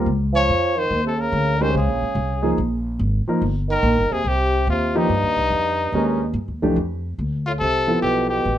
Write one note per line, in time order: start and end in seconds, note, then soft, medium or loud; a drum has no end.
0.06 0.47 C#2 medium
0.33 0.78 F3 medium
0.33 0.80 C#5 medium
0.49 0.90 F2 medium
0.76 1.03 D#3 medium
0.76 1.06 C5 medium
0.91 1.31 D#2 medium
1.04 1.18 C3 medium
1.04 1.22 A4 medium
1.16 1.60 C#3 medium
1.20 1.63 A#4 medium
1.32 1.73 D2 medium
1.59 1.72 D#3 medium
1.59 1.74 G#3 medium
1.59 1.74 C#4 medium
1.59 1.74 G4 medium
1.59 1.74 C5 medium
1.59 1.76 C5 medium
1.73 1.88 C#2 medium
1.73 2.53 C#3 medium
1.78 2.56 G#4 medium
1.88 2.02 A#1 medium
2.03 2.15 G#1 medium
2.15 2.56 C2 medium
2.42 2.56 F3 medium
2.42 2.56 A#3 medium
2.42 2.56 D#4 medium
2.42 2.57 G#4 medium
2.58 2.99 A#1 medium
2.99 3.25 G#1 medium
3.27 3.41 F3 medium
3.27 3.41 A#3 medium
3.27 3.41 D#4 medium
3.27 3.41 A#4 medium
3.27 muted upright bass stroke soft
3.42 3.82 G1 medium
3.69 4.13 D#3 medium
3.69 4.14 A#4 medium
3.83 3.97 A#1 medium
3.97 4.11 G1 medium
4.11 4.24 D#1 medium
4.11 4.26 C3 medium
4.11 4.29 G#4 medium
4.24 4.66 C2 medium
4.24 4.68 C3 medium
4.24 4.69 G4 loud
4.67 5.08 D#2 medium
4.67 4.99 C3 medium
4.67 4.99 F4 medium
4.95 6.36 G2 medium
4.95 5.08 F3 medium
4.95 5.08 A#3 medium
4.95 5.08 D#4 medium
4.95 6.36 D#4 medium
4.95 5.08 G4 medium
5.09 5.24 G2 medium
5.22 5.36 D#2 medium
5.37 5.50 C2 medium
5.50 5.91 F2 medium
5.92 6.33 D#2 medium
5.92 6.18 G#3 medium
5.92 6.18 C#4 medium
5.92 6.19 G4 medium
5.92 6.19 A#4 medium
6.34 6.49 G2 medium
6.48 6.62 D#2 medium
6.62 6.75 C2 medium
6.62 6.75 F2 medium
6.62 6.76 E3 medium
6.62 6.75 A3 medium
6.62 6.76 D4 medium
6.62 6.76 G4 medium
6.76 7.17 F2 medium
7.18 7.59 D2 medium
7.46 7.54 A2 medium
7.46 7.53 F4 medium
7.59 8.02 C2 medium
7.59 7.99 C3 medium
7.59 7.99 A4 medium
7.87 8.41 F3 medium
7.87 8.41 B3 medium
7.87 8.41 E4 medium
7.87 8.42 A4 medium
8.01 8.43 B1 medium
8.01 8.27 B2 medium
8.01 8.28 G4 medium
8.29 8.58 B2 medium
8.29 8.58 G4 medium
8.45 8.58 A1 medium